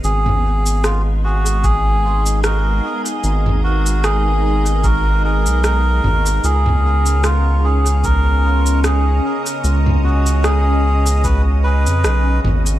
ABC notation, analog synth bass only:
X:1
M:4/4
L:1/16
Q:"Swing 16ths" 1/4=75
K:G#dor
V:1 name="Analog synth bass" clef=bass
G,,,12- G,,,2 z2 | G,,,8- G,,,3 B,,,3 G,,,2 | C,,12- C,,2 z2 | C,,8- C,,3 E,, B,,,2 G,,,2 |]